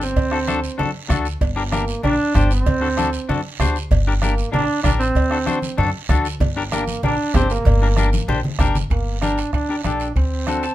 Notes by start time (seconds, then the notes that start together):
Already playing: G1
0.01 C4, short guiro
0.16 D2, bombo low, cowbell, long guiro
0.31 D4 F#4 A4, bombo rim
0.48 D4 F#4 A4, bombo rim, high conga, short guiro
0.64 short guiro
0.78 F#2 D4 F#4 A4, cowbell, low conga, long guiro
1.09 D2 D4 F#4 A4, bombo low, bombo rim, high conga, low conga, short guiro
1.25 short guiro
1.41 G1, bombo low, cowbell, long guiro
1.56 D4 G4 A#4
1.72 A#3 D4 G4 A#4, bombo rim, high conga, short guiro
1.88 short guiro
2.03 A#1 D4 G4 A#4, cowbell, low conga, long guiro
2.35 G1 D4 G4 C5, bombo low, bombo rim, high conga, short guiro
2.51 C4, short guiro
2.66 D2, bombo low, cowbell, low conga, long guiro
2.81 D4 F#4 A4
2.97 D4 F#4 A4, bombo rim, high conga, short guiro
3.13 short guiro
3.29 F#2 D4 F#4 A4, cowbell, low conga, long guiro
3.60 D2 D4 F#4 C5, bombo low, bombo rim, high conga, low conga, low timbale, short guiro
3.76 short guiro
3.91 G1, bombo low, cowbell, low conga, long guiro
4.07 D4 G4 A#4
4.22 A#3 D4 G4 A#4, bombo rim, high conga, short guiro
4.38 short guiro
4.52 A#1 D4 G4 A#4, cowbell, low conga, long guiro
4.83 A1 D4 G4 A#4, bombo low, bombo rim, high conga, low conga, short guiro
4.99 C4, short guiro
5.15 D2, bombo low, cowbell, long guiro
5.31 D4 F#4 A4, bombo rim
5.46 D4 F#4 C5, bombo rim, high conga, short guiro
5.62 high conga, short guiro
5.78 F#2 D4 F#4 A4, cowbell, low conga, long guiro
6.09 D2 D4 F#4 A4, bombo low, bombo rim, high conga, short guiro
6.25 short guiro
6.40 G1, bombo low, cowbell, low conga, long guiro
6.56 D4 G4 A#4
6.72 A#3 D4 G4 A#4, bombo rim, high conga, short guiro
6.88 high conga, short guiro
7.03 A#1 D4 G4 A#4, cowbell, low conga, long guiro
7.34 G1 C4 D4 G4 C5, bombo low, bombo rim, high conga, low conga, low timbale, short guiro
7.50 A#3, short guiro
7.65 G1, bombo low, cowbell, long guiro
7.82 D4 G4 A#4
7.96 D4 G4 A#4, bombo rim, high conga, short guiro
8.13 high conga, short guiro
8.28 A#1 D4 G4 C5, cowbell, low conga, long guiro
8.44 low conga
8.59 G1 D4 G4 A#4, bombo low, bombo rim, low conga, short guiro
8.75 low conga, short guiro
8.90 G1 A#3, bombo low, high conga, high timbale, long guiro
9.21 D4 G4 A#4, bombo rim, high conga, high timbale, short guiro
9.38 high timbale, short guiro
9.53 D2 D4, bombo low, bombo rim, high conga, high timbale, long guiro
9.69 D4 G4 A#4
9.83 A#1 D4 G4 A4, bombo rim, high conga, high timbale, short guiro
10.00 high timbale, short guiro
10.16 D2 C4, bombo low, high conga, high timbale, long guiro
10.47 D4 F#4 A4, bombo rim, high conga, high timbale, short guiro
10.63 A5, high timbale, short guiro